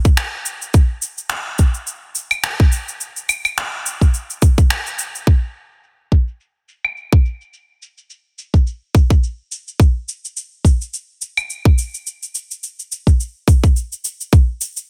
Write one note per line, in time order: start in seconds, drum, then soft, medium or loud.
0.05 kick loud
0.05 cabasa soft
0.17 finger snap medium
0.17 cabasa soft
0.46 cabasa medium
0.62 cabasa soft
0.74 kick loud
0.74 cabasa soft
1.02 cabasa medium
1.18 cabasa soft
1.30 finger snap medium
1.30 cabasa soft
1.58 kick medium
1.58 cabasa medium
1.74 cabasa soft
1.87 cabasa soft
2.15 cabasa medium
2.31 cabasa soft
2.31 claves medium
2.44 finger snap loud
2.44 cabasa soft
2.60 kick medium
2.72 cabasa medium
2.88 cabasa soft
3.01 cabasa soft
3.16 cabasa soft
3.29 cabasa medium
3.29 claves medium
3.45 cabasa soft
3.45 claves medium
3.58 finger snap medium
3.58 cabasa soft
3.86 cabasa medium
4.01 kick medium
4.01 cabasa soft
4.14 cabasa soft
4.30 cabasa soft
4.42 kick medium
4.42 cabasa medium
4.58 kick loud
4.58 cabasa soft
4.70 finger snap loud
4.70 cabasa soft
4.87 cabasa soft
4.99 cabasa medium
5.15 cabasa soft
5.27 kick loud
5.56 cabasa medium
5.71 cabasa soft
5.84 cabasa soft
6.12 kick medium
6.28 cabasa soft
6.40 cabasa soft
6.68 cabasa medium
6.84 cabasa soft
6.84 claves medium
6.97 cabasa soft
7.13 kick medium
7.25 cabasa medium
7.41 cabasa soft
7.53 cabasa soft
7.82 cabasa medium
7.98 cabasa soft
8.10 cabasa soft
8.38 cabasa medium
8.54 kick medium
8.54 cabasa soft
8.67 cabasa soft
8.95 kick medium
8.95 cabasa medium
9.10 kick loud
9.10 cabasa soft
9.24 cabasa soft
9.52 cabasa medium
9.68 cabasa soft
9.80 kick loud
9.80 cabasa soft
10.08 cabasa medium
10.25 cabasa soft
10.37 cabasa soft
10.65 kick medium
10.65 cabasa medium
10.81 cabasa soft
10.94 cabasa soft
11.22 cabasa medium
11.37 cabasa soft
11.37 claves medium
11.50 cabasa soft
11.65 kick medium
11.78 cabasa medium
11.94 cabasa soft
12.07 cabasa soft
12.23 cabasa soft
12.35 cabasa medium
12.51 cabasa soft
12.63 cabasa soft
12.79 cabasa soft
12.92 cabasa medium
13.07 kick medium
13.07 cabasa soft
13.20 cabasa soft
13.48 kick medium
13.48 cabasa medium
13.64 kick loud
13.64 cabasa soft
13.76 cabasa soft
13.92 cabasa soft
14.05 cabasa medium
14.21 cabasa soft
14.33 kick loud
14.33 cabasa soft
14.61 cabasa medium
14.77 cabasa soft